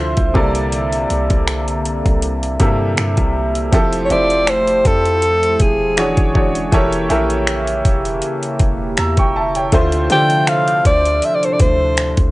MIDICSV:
0, 0, Header, 1, 6, 480
1, 0, Start_track
1, 0, Key_signature, -1, "major"
1, 0, Tempo, 750000
1, 465, Time_signature, 4, 2, 24, 8
1, 7879, End_track
2, 0, Start_track
2, 0, Title_t, "Alto saxophone"
2, 0, Program_c, 0, 65
2, 2593, Note_on_c, 0, 73, 74
2, 2635, Note_on_c, 0, 74, 110
2, 2644, Note_off_c, 0, 73, 0
2, 2876, Note_on_c, 0, 72, 99
2, 2885, Note_off_c, 0, 74, 0
2, 3116, Note_on_c, 0, 69, 100
2, 3126, Note_off_c, 0, 72, 0
2, 3595, Note_on_c, 0, 68, 88
2, 3604, Note_off_c, 0, 69, 0
2, 4070, Note_off_c, 0, 68, 0
2, 6476, Note_on_c, 0, 79, 115
2, 6712, Note_on_c, 0, 77, 104
2, 6722, Note_off_c, 0, 79, 0
2, 6948, Note_off_c, 0, 77, 0
2, 6952, Note_on_c, 0, 74, 98
2, 7201, Note_on_c, 0, 76, 83
2, 7210, Note_off_c, 0, 74, 0
2, 7264, Note_on_c, 0, 74, 82
2, 7274, Note_off_c, 0, 76, 0
2, 7325, Note_on_c, 0, 72, 78
2, 7335, Note_off_c, 0, 74, 0
2, 7378, Note_on_c, 0, 74, 80
2, 7388, Note_off_c, 0, 72, 0
2, 7428, Note_off_c, 0, 74, 0
2, 7432, Note_on_c, 0, 72, 91
2, 7879, Note_off_c, 0, 72, 0
2, 7879, End_track
3, 0, Start_track
3, 0, Title_t, "Grand piano"
3, 0, Program_c, 1, 0
3, 0, Control_c, 1, 64, 127
3, 0, Note_on_c, 1, 50, 78
3, 0, Note_on_c, 1, 57, 74
3, 0, Note_on_c, 1, 64, 74
3, 0, Note_on_c, 1, 65, 74
3, 0, Note_on_c, 1, 72, 87
3, 208, Note_off_c, 1, 50, 0
3, 210, Note_off_c, 1, 57, 0
3, 212, Note_off_c, 1, 64, 0
3, 214, Note_off_c, 1, 65, 0
3, 215, Note_off_c, 1, 72, 0
3, 218, Note_on_c, 1, 48, 87
3, 221, Note_on_c, 1, 55, 76
3, 224, Note_on_c, 1, 58, 78
3, 227, Note_on_c, 1, 64, 75
3, 230, Note_on_c, 1, 69, 77
3, 232, Note_on_c, 1, 74, 89
3, 233, Control_c, 1, 64, 0
3, 332, Control_c, 1, 64, 127
3, 993, Note_off_c, 1, 48, 0
3, 995, Note_off_c, 1, 55, 0
3, 996, Note_off_c, 1, 58, 0
3, 998, Note_off_c, 1, 64, 0
3, 999, Note_off_c, 1, 69, 0
3, 1000, Note_off_c, 1, 74, 0
3, 1661, Note_on_c, 1, 48, 82
3, 1663, Note_on_c, 1, 55, 77
3, 1667, Note_on_c, 1, 58, 71
3, 1671, Note_on_c, 1, 64, 69
3, 1673, Note_on_c, 1, 69, 71
3, 1676, Note_on_c, 1, 76, 86
3, 2129, Note_off_c, 1, 48, 0
3, 2130, Note_off_c, 1, 55, 0
3, 2132, Note_off_c, 1, 58, 0
3, 2134, Note_off_c, 1, 64, 0
3, 2135, Note_off_c, 1, 69, 0
3, 2136, Note_off_c, 1, 76, 0
3, 2381, Note_on_c, 1, 53, 85
3, 2385, Note_on_c, 1, 60, 73
3, 2388, Note_on_c, 1, 64, 79
3, 2392, Control_c, 1, 64, 0
3, 2392, Note_on_c, 1, 67, 77
3, 2396, Note_on_c, 1, 69, 94
3, 2496, Control_c, 1, 64, 127
3, 2545, Note_off_c, 1, 53, 0
3, 2547, Note_off_c, 1, 60, 0
3, 2548, Note_off_c, 1, 64, 0
3, 2550, Note_off_c, 1, 67, 0
3, 2552, Note_off_c, 1, 69, 0
3, 2620, Note_on_c, 1, 53, 73
3, 2624, Note_on_c, 1, 60, 66
3, 2627, Note_on_c, 1, 64, 65
3, 2631, Note_on_c, 1, 67, 65
3, 2635, Note_on_c, 1, 72, 77
3, 3250, Note_off_c, 1, 53, 0
3, 3252, Note_off_c, 1, 60, 0
3, 3254, Note_off_c, 1, 64, 0
3, 3256, Note_off_c, 1, 67, 0
3, 3257, Note_off_c, 1, 72, 0
3, 3821, Note_on_c, 1, 52, 77
3, 3824, Note_on_c, 1, 62, 75
3, 3828, Note_on_c, 1, 66, 72
3, 3831, Note_on_c, 1, 68, 72
3, 3834, Control_c, 1, 64, 0
3, 3835, Note_on_c, 1, 73, 85
3, 3956, Control_c, 1, 64, 127
3, 4019, Note_off_c, 1, 52, 0
3, 4020, Note_off_c, 1, 62, 0
3, 4022, Note_off_c, 1, 66, 0
3, 4024, Note_off_c, 1, 68, 0
3, 4026, Note_off_c, 1, 73, 0
3, 4060, Note_on_c, 1, 52, 63
3, 4064, Note_on_c, 1, 62, 62
3, 4068, Note_on_c, 1, 66, 57
3, 4072, Note_on_c, 1, 68, 59
3, 4076, Note_on_c, 1, 73, 72
3, 4224, Note_off_c, 1, 52, 0
3, 4226, Note_off_c, 1, 62, 0
3, 4228, Note_off_c, 1, 66, 0
3, 4230, Note_off_c, 1, 68, 0
3, 4232, Note_off_c, 1, 73, 0
3, 4300, Note_on_c, 1, 52, 85
3, 4303, Note_on_c, 1, 64, 81
3, 4306, Note_on_c, 1, 67, 83
3, 4309, Note_on_c, 1, 69, 83
3, 4313, Control_c, 1, 64, 0
3, 4313, Note_on_c, 1, 70, 75
3, 4315, Note_on_c, 1, 73, 99
3, 4428, Control_c, 1, 64, 127
3, 4464, Note_off_c, 1, 52, 0
3, 4466, Note_off_c, 1, 64, 0
3, 4467, Note_off_c, 1, 67, 0
3, 4469, Note_off_c, 1, 69, 0
3, 4470, Note_off_c, 1, 70, 0
3, 4472, Note_off_c, 1, 73, 0
3, 4539, Note_on_c, 1, 52, 87
3, 4543, Note_on_c, 1, 64, 79
3, 4545, Note_on_c, 1, 67, 77
3, 4548, Note_on_c, 1, 69, 77
3, 4551, Note_on_c, 1, 70, 80
3, 4554, Note_on_c, 1, 76, 90
3, 5169, Note_off_c, 1, 52, 0
3, 5171, Note_off_c, 1, 64, 0
3, 5172, Note_off_c, 1, 67, 0
3, 5174, Note_off_c, 1, 69, 0
3, 5176, Note_off_c, 1, 70, 0
3, 5177, Note_off_c, 1, 76, 0
3, 5749, Note_on_c, 1, 88, 67
3, 5753, Note_on_c, 1, 82, 56
3, 5870, Note_off_c, 1, 88, 0
3, 5872, Note_off_c, 1, 82, 0
3, 5880, Note_on_c, 1, 85, 67
3, 5883, Note_on_c, 1, 79, 59
3, 5982, Note_off_c, 1, 85, 0
3, 5984, Note_off_c, 1, 79, 0
3, 5990, Note_on_c, 1, 81, 70
3, 5993, Note_on_c, 1, 76, 59
3, 6111, Note_off_c, 1, 81, 0
3, 6112, Note_off_c, 1, 76, 0
3, 6119, Note_on_c, 1, 79, 66
3, 6122, Note_on_c, 1, 73, 53
3, 6221, Note_on_c, 1, 50, 85
3, 6225, Note_on_c, 1, 57, 81
3, 6228, Note_on_c, 1, 64, 80
3, 6232, Note_on_c, 1, 65, 83
3, 6233, Control_c, 1, 64, 0
3, 6235, Note_on_c, 1, 72, 100
3, 6331, Control_c, 1, 64, 127
3, 6345, Note_off_c, 1, 79, 0
3, 6346, Note_off_c, 1, 73, 0
3, 6385, Note_off_c, 1, 50, 0
3, 6387, Note_off_c, 1, 57, 0
3, 6388, Note_off_c, 1, 64, 0
3, 6390, Note_off_c, 1, 65, 0
3, 6392, Note_off_c, 1, 72, 0
3, 6462, Note_on_c, 1, 50, 75
3, 6465, Note_on_c, 1, 57, 67
3, 6470, Note_on_c, 1, 62, 70
3, 6474, Note_on_c, 1, 65, 72
3, 6477, Note_on_c, 1, 72, 83
3, 7091, Note_off_c, 1, 50, 0
3, 7093, Note_off_c, 1, 57, 0
3, 7095, Note_off_c, 1, 62, 0
3, 7097, Note_off_c, 1, 65, 0
3, 7098, Note_off_c, 1, 72, 0
3, 7879, End_track
4, 0, Start_track
4, 0, Title_t, "Analog synth pad"
4, 0, Program_c, 2, 89
4, 0, Note_on_c, 2, 48, 80
4, 0, Note_on_c, 2, 53, 70
4, 0, Note_on_c, 2, 76, 82
4, 208, Note_off_c, 2, 48, 0
4, 208, Note_off_c, 2, 53, 0
4, 224, Note_on_c, 2, 50, 77
4, 224, Note_on_c, 2, 58, 69
4, 224, Note_on_c, 2, 69, 74
4, 2359, Note_off_c, 2, 76, 0
4, 2363, Note_off_c, 2, 50, 0
4, 2363, Note_off_c, 2, 58, 0
4, 2363, Note_off_c, 2, 69, 0
4, 2384, Note_on_c, 2, 53, 82
4, 2384, Note_on_c, 2, 57, 70
4, 2384, Note_on_c, 2, 64, 77
4, 3810, Note_off_c, 2, 53, 0
4, 3810, Note_off_c, 2, 57, 0
4, 3810, Note_off_c, 2, 64, 0
4, 3824, Note_on_c, 2, 50, 70
4, 3824, Note_on_c, 2, 56, 66
4, 3825, Note_on_c, 2, 61, 63
4, 3825, Note_on_c, 2, 66, 82
4, 4300, Note_off_c, 2, 50, 0
4, 4300, Note_off_c, 2, 56, 0
4, 4300, Note_off_c, 2, 61, 0
4, 4300, Note_off_c, 2, 66, 0
4, 4304, Note_on_c, 2, 49, 76
4, 4304, Note_on_c, 2, 67, 80
4, 4305, Note_on_c, 2, 58, 74
4, 6205, Note_off_c, 2, 49, 0
4, 6205, Note_off_c, 2, 67, 0
4, 6206, Note_off_c, 2, 58, 0
4, 6222, Note_on_c, 2, 62, 84
4, 6223, Note_on_c, 2, 48, 77
4, 6223, Note_on_c, 2, 53, 70
4, 7879, Note_off_c, 2, 48, 0
4, 7879, Note_off_c, 2, 53, 0
4, 7879, Note_off_c, 2, 62, 0
4, 7879, End_track
5, 0, Start_track
5, 0, Title_t, "808-style bass"
5, 0, Program_c, 3, 38
5, 0, Note_on_c, 3, 38, 101
5, 99, Note_off_c, 3, 38, 0
5, 112, Note_on_c, 3, 36, 99
5, 680, Note_off_c, 3, 36, 0
5, 705, Note_on_c, 3, 36, 103
5, 829, Note_off_c, 3, 36, 0
5, 835, Note_on_c, 3, 36, 94
5, 1296, Note_off_c, 3, 36, 0
5, 1316, Note_on_c, 3, 36, 95
5, 1652, Note_off_c, 3, 36, 0
5, 1665, Note_on_c, 3, 43, 99
5, 1895, Note_off_c, 3, 43, 0
5, 1904, Note_on_c, 3, 43, 103
5, 2029, Note_off_c, 3, 43, 0
5, 2033, Note_on_c, 3, 36, 96
5, 2370, Note_off_c, 3, 36, 0
5, 2385, Note_on_c, 3, 29, 100
5, 2615, Note_off_c, 3, 29, 0
5, 2625, Note_on_c, 3, 29, 103
5, 3086, Note_off_c, 3, 29, 0
5, 3105, Note_on_c, 3, 41, 98
5, 3566, Note_off_c, 3, 41, 0
5, 3585, Note_on_c, 3, 28, 104
5, 3940, Note_off_c, 3, 28, 0
5, 3952, Note_on_c, 3, 28, 95
5, 4290, Note_off_c, 3, 28, 0
5, 4305, Note_on_c, 3, 28, 109
5, 4535, Note_off_c, 3, 28, 0
5, 4544, Note_on_c, 3, 34, 101
5, 5005, Note_off_c, 3, 34, 0
5, 5025, Note_on_c, 3, 28, 98
5, 5255, Note_off_c, 3, 28, 0
5, 5503, Note_on_c, 3, 28, 102
5, 5735, Note_off_c, 3, 28, 0
5, 5746, Note_on_c, 3, 40, 103
5, 5870, Note_off_c, 3, 40, 0
5, 5873, Note_on_c, 3, 28, 94
5, 6210, Note_off_c, 3, 28, 0
5, 6225, Note_on_c, 3, 38, 109
5, 6455, Note_off_c, 3, 38, 0
5, 6465, Note_on_c, 3, 50, 105
5, 6925, Note_off_c, 3, 50, 0
5, 6945, Note_on_c, 3, 38, 101
5, 7175, Note_off_c, 3, 38, 0
5, 7423, Note_on_c, 3, 38, 104
5, 7779, Note_off_c, 3, 38, 0
5, 7793, Note_on_c, 3, 38, 96
5, 7879, Note_off_c, 3, 38, 0
5, 7879, End_track
6, 0, Start_track
6, 0, Title_t, "Drums"
6, 108, Note_on_c, 9, 42, 45
6, 112, Note_on_c, 9, 36, 83
6, 172, Note_off_c, 9, 42, 0
6, 176, Note_off_c, 9, 36, 0
6, 225, Note_on_c, 9, 36, 90
6, 289, Note_off_c, 9, 36, 0
6, 352, Note_on_c, 9, 42, 53
6, 416, Note_off_c, 9, 42, 0
6, 463, Note_on_c, 9, 42, 72
6, 527, Note_off_c, 9, 42, 0
6, 592, Note_on_c, 9, 42, 47
6, 656, Note_off_c, 9, 42, 0
6, 705, Note_on_c, 9, 42, 55
6, 769, Note_off_c, 9, 42, 0
6, 832, Note_on_c, 9, 42, 42
6, 835, Note_on_c, 9, 36, 86
6, 896, Note_off_c, 9, 42, 0
6, 899, Note_off_c, 9, 36, 0
6, 944, Note_on_c, 9, 26, 112
6, 946, Note_on_c, 9, 42, 63
6, 1008, Note_off_c, 9, 26, 0
6, 1010, Note_off_c, 9, 42, 0
6, 1074, Note_on_c, 9, 42, 44
6, 1138, Note_off_c, 9, 42, 0
6, 1187, Note_on_c, 9, 42, 72
6, 1251, Note_off_c, 9, 42, 0
6, 1316, Note_on_c, 9, 36, 94
6, 1316, Note_on_c, 9, 42, 49
6, 1380, Note_off_c, 9, 36, 0
6, 1380, Note_off_c, 9, 42, 0
6, 1423, Note_on_c, 9, 42, 76
6, 1487, Note_off_c, 9, 42, 0
6, 1555, Note_on_c, 9, 42, 47
6, 1619, Note_off_c, 9, 42, 0
6, 1662, Note_on_c, 9, 42, 72
6, 1664, Note_on_c, 9, 36, 89
6, 1726, Note_off_c, 9, 42, 0
6, 1728, Note_off_c, 9, 36, 0
6, 1903, Note_on_c, 9, 42, 69
6, 1906, Note_on_c, 9, 26, 101
6, 1967, Note_off_c, 9, 42, 0
6, 1970, Note_off_c, 9, 26, 0
6, 2029, Note_on_c, 9, 42, 46
6, 2032, Note_on_c, 9, 36, 83
6, 2093, Note_off_c, 9, 42, 0
6, 2096, Note_off_c, 9, 36, 0
6, 2273, Note_on_c, 9, 42, 54
6, 2337, Note_off_c, 9, 42, 0
6, 2384, Note_on_c, 9, 42, 78
6, 2385, Note_on_c, 9, 36, 99
6, 2448, Note_off_c, 9, 42, 0
6, 2449, Note_off_c, 9, 36, 0
6, 2512, Note_on_c, 9, 42, 51
6, 2576, Note_off_c, 9, 42, 0
6, 2625, Note_on_c, 9, 42, 59
6, 2689, Note_off_c, 9, 42, 0
6, 2752, Note_on_c, 9, 42, 41
6, 2816, Note_off_c, 9, 42, 0
6, 2863, Note_on_c, 9, 26, 110
6, 2864, Note_on_c, 9, 42, 59
6, 2927, Note_off_c, 9, 26, 0
6, 2928, Note_off_c, 9, 42, 0
6, 2992, Note_on_c, 9, 42, 44
6, 3056, Note_off_c, 9, 42, 0
6, 3104, Note_on_c, 9, 42, 70
6, 3105, Note_on_c, 9, 36, 85
6, 3168, Note_off_c, 9, 42, 0
6, 3169, Note_off_c, 9, 36, 0
6, 3235, Note_on_c, 9, 42, 47
6, 3299, Note_off_c, 9, 42, 0
6, 3342, Note_on_c, 9, 42, 76
6, 3406, Note_off_c, 9, 42, 0
6, 3475, Note_on_c, 9, 42, 50
6, 3539, Note_off_c, 9, 42, 0
6, 3581, Note_on_c, 9, 42, 71
6, 3584, Note_on_c, 9, 36, 91
6, 3645, Note_off_c, 9, 42, 0
6, 3648, Note_off_c, 9, 36, 0
6, 3822, Note_on_c, 9, 42, 69
6, 3826, Note_on_c, 9, 26, 104
6, 3886, Note_off_c, 9, 42, 0
6, 3890, Note_off_c, 9, 26, 0
6, 3950, Note_on_c, 9, 42, 45
6, 3952, Note_on_c, 9, 36, 87
6, 4014, Note_off_c, 9, 42, 0
6, 4016, Note_off_c, 9, 36, 0
6, 4065, Note_on_c, 9, 36, 87
6, 4129, Note_off_c, 9, 36, 0
6, 4194, Note_on_c, 9, 42, 53
6, 4258, Note_off_c, 9, 42, 0
6, 4304, Note_on_c, 9, 36, 93
6, 4304, Note_on_c, 9, 42, 76
6, 4368, Note_off_c, 9, 36, 0
6, 4368, Note_off_c, 9, 42, 0
6, 4432, Note_on_c, 9, 42, 49
6, 4496, Note_off_c, 9, 42, 0
6, 4544, Note_on_c, 9, 42, 55
6, 4608, Note_off_c, 9, 42, 0
6, 4672, Note_on_c, 9, 42, 44
6, 4736, Note_off_c, 9, 42, 0
6, 4782, Note_on_c, 9, 26, 113
6, 4784, Note_on_c, 9, 42, 62
6, 4846, Note_off_c, 9, 26, 0
6, 4848, Note_off_c, 9, 42, 0
6, 4911, Note_on_c, 9, 42, 47
6, 4975, Note_off_c, 9, 42, 0
6, 5024, Note_on_c, 9, 42, 68
6, 5025, Note_on_c, 9, 36, 91
6, 5088, Note_off_c, 9, 42, 0
6, 5089, Note_off_c, 9, 36, 0
6, 5154, Note_on_c, 9, 42, 48
6, 5218, Note_off_c, 9, 42, 0
6, 5260, Note_on_c, 9, 42, 76
6, 5324, Note_off_c, 9, 42, 0
6, 5393, Note_on_c, 9, 42, 48
6, 5457, Note_off_c, 9, 42, 0
6, 5500, Note_on_c, 9, 42, 68
6, 5503, Note_on_c, 9, 36, 90
6, 5564, Note_off_c, 9, 42, 0
6, 5567, Note_off_c, 9, 36, 0
6, 5741, Note_on_c, 9, 42, 71
6, 5744, Note_on_c, 9, 26, 104
6, 5805, Note_off_c, 9, 42, 0
6, 5808, Note_off_c, 9, 26, 0
6, 5869, Note_on_c, 9, 42, 46
6, 5872, Note_on_c, 9, 36, 90
6, 5933, Note_off_c, 9, 42, 0
6, 5936, Note_off_c, 9, 36, 0
6, 6113, Note_on_c, 9, 42, 54
6, 6177, Note_off_c, 9, 42, 0
6, 6222, Note_on_c, 9, 42, 77
6, 6224, Note_on_c, 9, 36, 95
6, 6286, Note_off_c, 9, 42, 0
6, 6288, Note_off_c, 9, 36, 0
6, 6351, Note_on_c, 9, 42, 53
6, 6415, Note_off_c, 9, 42, 0
6, 6463, Note_on_c, 9, 42, 58
6, 6527, Note_off_c, 9, 42, 0
6, 6591, Note_on_c, 9, 42, 44
6, 6655, Note_off_c, 9, 42, 0
6, 6703, Note_on_c, 9, 26, 114
6, 6705, Note_on_c, 9, 42, 63
6, 6767, Note_off_c, 9, 26, 0
6, 6769, Note_off_c, 9, 42, 0
6, 6833, Note_on_c, 9, 42, 46
6, 6897, Note_off_c, 9, 42, 0
6, 6945, Note_on_c, 9, 36, 89
6, 6945, Note_on_c, 9, 42, 72
6, 7009, Note_off_c, 9, 36, 0
6, 7009, Note_off_c, 9, 42, 0
6, 7075, Note_on_c, 9, 42, 49
6, 7139, Note_off_c, 9, 42, 0
6, 7182, Note_on_c, 9, 42, 72
6, 7246, Note_off_c, 9, 42, 0
6, 7315, Note_on_c, 9, 42, 48
6, 7379, Note_off_c, 9, 42, 0
6, 7421, Note_on_c, 9, 42, 72
6, 7424, Note_on_c, 9, 36, 92
6, 7485, Note_off_c, 9, 42, 0
6, 7488, Note_off_c, 9, 36, 0
6, 7662, Note_on_c, 9, 42, 71
6, 7665, Note_on_c, 9, 26, 107
6, 7726, Note_off_c, 9, 42, 0
6, 7729, Note_off_c, 9, 26, 0
6, 7790, Note_on_c, 9, 42, 47
6, 7792, Note_on_c, 9, 36, 94
6, 7854, Note_off_c, 9, 42, 0
6, 7856, Note_off_c, 9, 36, 0
6, 7879, End_track
0, 0, End_of_file